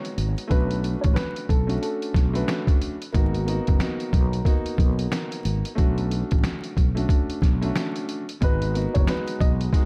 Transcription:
Already playing: grand piano G#3 B3 D#4 F#4, upright piano C#5
0.05 closed hi-hat
0.17 fretless electric bass G#1, closed hi-hat
0.38 closed hi-hat
0.47 fretless electric bass B1, grand piano A3 C#4 D4 F#4, upright piano B4, kick, closed hi-hat
0.71 closed hi-hat
0.84 closed hi-hat
1.01 fretless electric bass A1, upright piano C#5, kick, closed hi-hat
1.14 upright piano B4, snare, closed hi-hat
1.36 closed hi-hat
1.49 fretless electric bass B1, upright piano A4, kick, closed hi-hat
1.67 grand piano A3 C#4 D4 F#4, closed hi-hat
1.82 upright piano A4, closed hi-hat
2.02 closed hi-hat
2.14 fretless electric bass B1, kick, snare, closed hi-hat
2.33 grand piano A3 C#4 D4 F#4, upright piano B4, closed hi-hat
2.48 snare, closed hi-hat
2.67 kick, closed hi-hat
2.82 closed hi-hat
3.02 closed hi-hat
3.13 fretless electric bass G#1, grand piano A#3 B3 D#4 F#4, kick, closed hi-hat
3.34 closed hi-hat
3.46 grand piano A#3 B3 D#4 F#4, closed hi-hat
3.67 fretless electric bass F#1, kick, closed hi-hat
3.79 grand piano A#3 B3 D#4 F#4, snare, closed hi-hat
4.00 closed hi-hat
4.13 fretless electric bass B1, kick, closed hi-hat
4.33 closed hi-hat
4.45 grand piano A#3 B3 D#4 F#4, kick, closed hi-hat
4.66 closed hi-hat
4.78 fretless electric bass B1, kick, closed hi-hat
4.99 closed hi-hat
5.12 snare, closed hi-hat
5.32 closed hi-hat
5.45 fretless electric bass G#1, closed hi-hat
5.65 closed hi-hat
5.75 fretless electric bass B1, grand piano A3 C#4 D4 F#4, kick, closed hi-hat
5.98 closed hi-hat
6.11 closed hi-hat
6.31 fretless electric bass A1, kick, closed hi-hat
6.44 snare, closed hi-hat
6.64 closed hi-hat
6.77 fretless electric bass B1, kick, closed hi-hat
6.95 grand piano A3 C#4 D4 F#4, closed hi-hat
7.09 kick, closed hi-hat
7.30 closed hi-hat
7.42 fretless electric bass B1, kick, snare, closed hi-hat
7.61 grand piano A3 C#4 D4 F#4, closed hi-hat
7.76 snare, closed hi-hat
7.96 closed hi-hat
8.09 closed hi-hat
8.29 closed hi-hat
8.41 fretless electric bass G#1, grand piano G#3 B3 D#4 F#4, upright piano B4, kick, closed hi-hat
8.62 closed hi-hat
8.74 grand piano A#3 B3 D#4 F#4, closed hi-hat
8.94 fretless electric bass F#1, upright piano C#5, kick, closed hi-hat
9.07 grand piano G#3 B3 D#4 F#4, upright piano B4, snare, closed hi-hat
9.28 closed hi-hat
9.40 fretless electric bass B1, upright piano D#5, kick, closed hi-hat
9.61 closed hi-hat
9.73 grand piano G#3 B3 D#4 F#4, kick, closed hi-hat

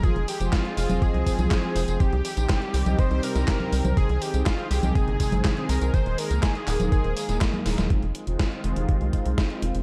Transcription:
0.03 analog synth pad F3 G#3 C4 G#4, analog polysynth F3 C4 F4 G#4 C5, analog synth lead G#4, kick, closed hi-hat, tambourine
0.16 analog synth bass F1, closed hi-hat
0.28 analog synth lead G4, open hi-hat, tambourine
0.40 analog synth bass F1, analog polysynth F3 C4 F4 G#4 C5, closed hi-hat, tambourine
0.53 analog synth lead F4, kick, snare, clap, closed hi-hat, tambourine
0.65 closed hi-hat
0.77 analog synth bass F1, analog synth lead F4, open hi-hat, tambourine
0.89 analog synth bass F1, analog polysynth F3 C4 F4 G#4 D#5, closed hi-hat, tambourine, high conga
1.02 analog synth lead G#4, kick, closed hi-hat, tambourine
1.14 analog synth bass C2, closed hi-hat
1.26 analog polysynth F3 C4 F4 G#4 C5, kick, open hi-hat, tambourine
1.39 analog synth bass C2, closed hi-hat, tambourine, high conga
1.51 kick, snare, clap, closed hi-hat, tambourine
1.63 analog polysynth F3 C4 F4 G#4 C5, closed hi-hat
1.76 analog synth bass F1, open hi-hat, tambourine
1.88 analog synth bass F1, closed hi-hat, tambourine
2.00 analog polysynth C3 C4 D#4 G4 C5, analog synth pad D#3 G3 C4 G4, analog synth lead G4, kick, closed hi-hat, tambourine
2.12 analog synth bass C2, closed hi-hat
2.25 open hi-hat, tambourine
2.37 analog synth bass A#1, analog polysynth C3 C4 D#4 G4 C5, closed hi-hat, tambourine
2.49 kick, snare, clap, closed hi-hat
2.62 closed hi-hat
2.74 analog synth bass C2, open hi-hat, tambourine
2.86 analog synth bass C2, analog polysynth C3 C4 D#4 G4 D#5, closed hi-hat, tambourine, high conga
2.99 analog synth lead C5, kick, closed hi-hat, tambourine
3.11 analog synth bass C2, closed hi-hat
3.23 analog polysynth C3 C4 D#4 G4 C5, analog synth lead A#4, open hi-hat, tambourine
3.35 analog synth bass C2, snare, closed hi-hat, tambourine
3.48 kick, snare, clap, closed hi-hat
3.60 analog polysynth C3 C4 D#4 G4 C5, closed hi-hat, high conga
3.72 analog synth bass C2, open hi-hat, tambourine
3.85 analog synth bass C2, closed hi-hat, tambourine, high conga
3.97 analog polysynth C3 C4 D#4 G#4 C5, analog synth pad G#3 G#4, analog synth lead G#4, kick, closed hi-hat, tambourine
4.09 analog synth bass C2, closed hi-hat
4.21 analog synth lead G4, open hi-hat, tambourine
4.34 analog synth bass C2, analog polysynth C3 C4 D#4 G#4 C5, closed hi-hat, tambourine
4.46 analog synth lead F4, kick, snare, clap, closed hi-hat, tambourine
4.59 closed hi-hat
4.71 analog synth bass C2, analog synth lead G4, open hi-hat, tambourine
4.83 analog synth bass C2, analog polysynth C3 C4 D#4 G#4 D#5, closed hi-hat, tambourine, high conga
4.95 analog synth lead G#4, kick, closed hi-hat, tambourine
5.08 analog synth bass G1, closed hi-hat
5.20 analog polysynth C3 C4 D#4 G#4 C5, kick, open hi-hat, tambourine
5.32 analog synth bass G1, closed hi-hat, tambourine, high conga
5.45 kick, snare, clap, closed hi-hat, tambourine
5.57 analog polysynth C3 C4 D#4 G#4 C5, closed hi-hat
5.69 analog synth bass C2, analog synth lead A#4, open hi-hat, tambourine
5.81 analog synth bass C2, closed hi-hat, tambourine
5.94 analog polysynth D#3 A#3 D#4 G#4 A#4, analog synth pad A#3, analog synth lead C5, kick, closed hi-hat, tambourine
6.06 analog synth bass D#1, closed hi-hat
6.18 analog synth lead A#4, open hi-hat, tambourine
6.31 analog synth bass C#2, analog polysynth D#3 A#3 D#4 G#4 A#4, closed hi-hat, tambourine
6.43 analog synth lead G#4, kick, snare, clap, closed hi-hat, tambourine
6.55 closed hi-hat
6.68 analog synth bass D#1, clap, open hi-hat, tambourine
6.80 analog synth bass D#1, analog polysynth D#3 A#3 D#4 G#4 C5, closed hi-hat, tambourine, high conga
6.92 analog synth lead G#4, kick, closed hi-hat, tambourine
7.04 analog synth bass D#1, closed hi-hat
7.16 analog polysynth D#3 A#3 D#4 G#4 A#4, open hi-hat, tambourine
7.29 analog synth bass D#1, snare, closed hi-hat, tambourine
7.41 kick, snare, clap, closed hi-hat, tambourine
7.53 analog polysynth D#3 A#3 D#4 G#4 A#4, closed hi-hat, high conga
7.66 analog synth bass D#1, snare, open hi-hat, tambourine
7.78 analog synth bass D#1, snare, closed hi-hat, tambourine, high conga
7.90 analog synth pad D#3 G#3 C4 F4, analog polysynth G#3 C4 D#4 F4, kick, closed hi-hat
8.03 analog synth bass F1, closed hi-hat
8.15 closed hi-hat
8.27 analog synth bass F1, analog polysynth G#3 C4 D#4 F4, closed hi-hat
8.39 kick, snare, closed hi-hat
8.52 closed hi-hat
8.64 analog synth bass F1, closed hi-hat
8.76 analog synth bass F1, analog polysynth G#3 C4 D#4 G4, closed hi-hat
8.89 kick, closed hi-hat
9.01 analog synth bass C2, closed hi-hat
9.13 analog polysynth G#3 C4 D#4 F4, kick, closed hi-hat
9.26 analog synth bass C2, closed hi-hat
9.38 kick, snare, closed hi-hat
9.50 analog polysynth G#3 C4 D#4 F4, closed hi-hat
9.62 analog synth bass F1, closed hi-hat
9.75 analog synth bass F1, closed hi-hat

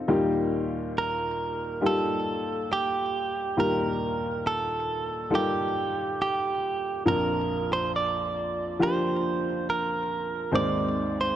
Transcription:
Already playing: upright piano C4 D#4 F4 A4
0.08 upright piano D#2 A#2 G3 A#3 D#4 F4 G4
0.98 clean electric guitar A#4
1.81 upright piano G3 A#3 D#4 F4 G4
1.86 clean electric guitar A4
2.73 clean electric guitar G4
3.57 upright piano D#2 A#2 G3 A#3 D#4 F4 G4, clean electric guitar A#4
4.47 clean electric guitar A4
5.30 upright piano G3 A#3 D#4 F4 A4
5.35 clean electric guitar G4
6.22 clean electric guitar G4
7.06 upright piano A#1 F2 F3 A#3 D4 F4 A#4, clean electric guitar A#4
7.73 clean electric guitar C5
7.96 clean electric guitar D5
8.79 upright piano F3 A#3 D4 F4 G4, clean electric guitar C5
9.70 clean electric guitar A#4
10.52 upright piano G#1 D#2 G#3 C4 D#4 G#4 C5, clean electric guitar D5
11.21 clean electric guitar C5

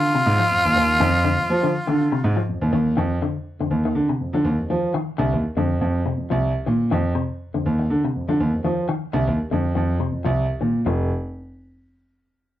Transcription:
Already playing: tenor saxophone F4
0.15 clean electric guitar C3
0.26 grand piano G#2
0.39 clean electric guitar F3
0.51 grand piano F2
0.65 grand piano D#2
0.76 grand piano D#2, clean electric guitar D#3
1.00 grand piano F2, clean electric guitar D#3
1.25 clean electric guitar D3
1.39 grand piano F2
1.50 grand piano F3
1.63 clean electric guitar D3
1.87 grand piano D3, clean electric guitar D#3
2.12 clean electric guitar C3
2.24 grand piano G#2
2.36 clean electric guitar F3
2.49 grand piano F2
2.62 grand piano D#2
2.73 grand piano D#2, clean electric guitar D#3
2.97 grand piano F2, clean electric guitar D#3
3.22 clean electric guitar D3
3.60 grand piano F2, clean electric guitar D3
3.71 grand piano D#2
3.85 clean electric guitar D#3
3.95 grand piano D3
4.09 clean electric guitar C3
4.21 grand piano F2
4.33 grand piano D3, clean electric guitar F3
4.45 grand piano D#2
4.58 grand piano F2
4.70 clean electric guitar D#3, grand piano F3
4.94 clean electric guitar D#3
5.18 grand piano C2, clean electric guitar D3
5.33 grand piano D#2
5.57 grand piano F2, clean electric guitar D3
5.81 grand piano F2, muted clean electric guitar stroke
6.06 clean electric guitar C3
6.17 grand piano F2
6.30 grand piano C2, clean electric guitar F3
6.66 grand piano A#2, clean electric guitar D#3
6.91 grand piano F2, clean electric guitar D#3
7.15 clean electric guitar C3
7.54 grand piano F2, clean electric guitar D3
7.66 grand piano D#2
7.79 muted clean electric guitar stroke
7.90 grand piano D3
8.04 clean electric guitar C3
8.15 grand piano F2
8.28 grand piano D3, clean electric guitar F3
8.40 grand piano D#2
8.54 grand piano F2
8.64 clean electric guitar D#3, grand piano F3
8.89 clean electric guitar D#3
9.13 grand piano C2, clean electric guitar D3
9.27 grand piano D#2
9.51 grand piano F2, clean electric guitar D3
9.75 grand piano F2, clean electric guitar D#3
10.00 clean electric guitar C3
10.12 grand piano F2
10.25 grand piano C2, clean electric guitar F3
10.61 grand piano A#2, clean electric guitar D#3
10.86 grand piano F1, clean electric guitar F3

